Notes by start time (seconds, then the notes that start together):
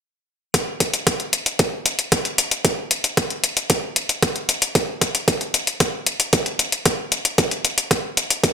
0.54 kick, closed hi-hat
0.80 kick, closed hi-hat
0.94 closed hi-hat
1.07 kick, closed hi-hat
1.20 closed hi-hat
1.33 closed hi-hat
1.46 closed hi-hat
1.59 kick, closed hi-hat
1.86 closed hi-hat
1.99 closed hi-hat
2.12 kick, closed hi-hat
2.25 closed hi-hat
2.38 closed hi-hat
2.51 closed hi-hat
2.65 kick, closed hi-hat
2.91 closed hi-hat
3.04 closed hi-hat
3.17 kick, closed hi-hat
3.30 closed hi-hat
3.44 closed hi-hat
3.57 closed hi-hat
3.70 kick, closed hi-hat
3.96 closed hi-hat
4.09 closed hi-hat
4.23 kick, closed hi-hat
4.36 closed hi-hat
4.49 closed hi-hat
4.62 closed hi-hat
4.75 kick, closed hi-hat
5.01 kick, closed hi-hat
5.15 closed hi-hat
5.28 kick, closed hi-hat
5.41 closed hi-hat
5.54 closed hi-hat
5.67 closed hi-hat
5.80 kick, closed hi-hat
6.07 closed hi-hat
6.20 closed hi-hat
6.33 kick, closed hi-hat
6.46 closed hi-hat
6.59 closed hi-hat
6.72 closed hi-hat
6.86 kick, closed hi-hat
7.12 closed hi-hat
7.25 closed hi-hat
7.38 kick, closed hi-hat
7.51 closed hi-hat
7.65 closed hi-hat
7.78 closed hi-hat
7.91 kick, closed hi-hat
8.17 closed hi-hat
8.30 closed hi-hat
8.44 kick, closed hi-hat